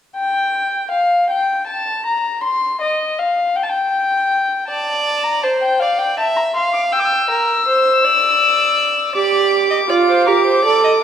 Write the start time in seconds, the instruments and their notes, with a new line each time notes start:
0.17 violin G5
0.91 violin F5
1.30 violin G5
1.67 violin A5
2.06 violin A#5
2.43 violin C6
2.81 violin D#5
3.18 violin F5
3.55 violin G5
3.63 violin A5
3.69 violin G5
4.68 violin D5 A5
5.24 violin A#5
5.42 violin C5 A5
5.61 violin G5
5.80 violin D5 F5
5.99 violin G5
6.17 violin E5 A5
6.36 violin A#5
6.54 violin F5 C6
6.73 violin D6
6.92 violin G5 E6
7.00 violin D6
7.05 violin E6
7.30 violin A#4
7.67 violin C5
8.04 violin D5
9.15 viola G4, violin D5 D6
9.70 violin D#5
9.89 viola F4, violin D5
10.09 violin C5
10.26 viola G4, violin A#4 D6
10.46 violin C5
10.65 viola A4, violin D5
10.84 violin D#5